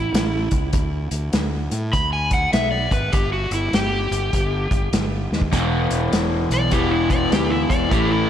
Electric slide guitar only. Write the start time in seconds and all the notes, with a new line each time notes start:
Already playing: E4
1.93 B5
2.13 G#5
2.34 F#5
2.53 E5
2.71 D5
2.93 B4
3.12 G4
3.33 F#4
3.54 E4
3.74 G4
6.54 D5
6.72 G4
6.91 E4
7.10 D5
7.33 G4
7.50 E4
7.69 D5
7.91 G4
8.11 E4